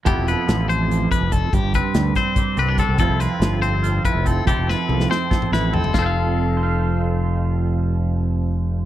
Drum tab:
HH |x-x-x-x-x-x-x-|x-x-x-x-x-x-x-|x-x-x-x-x-x-x-|x-------------|
SD |----o---------|----o-o-------|--o-o---------|--o--oo-o-o---|
T1 |--------------|--------------|--------------|----o---------|
T2 |--------------|--------------|--------------|---------o----|
FT |--------------|--------------|--------------|------------oo|
BD |o---------o-o-|o-o---o-o---o-|o---------o-o-|o-------o-----|

HH |--------------|--------------|
SD |o-------------|--------------|
T1 |--------------|--------------|
T2 |--------------|--------------|
FT |--------------|--------------|
BD |o-------------|--------------|